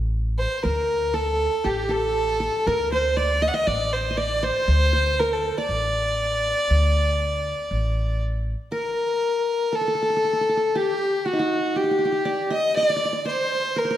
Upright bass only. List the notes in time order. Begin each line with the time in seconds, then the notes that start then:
Already playing: A1
0.65 D2
1.66 A1
2.67 D2
3.67 A1
4.68 D2
5.69 A1
6.71 D2
7.71 A1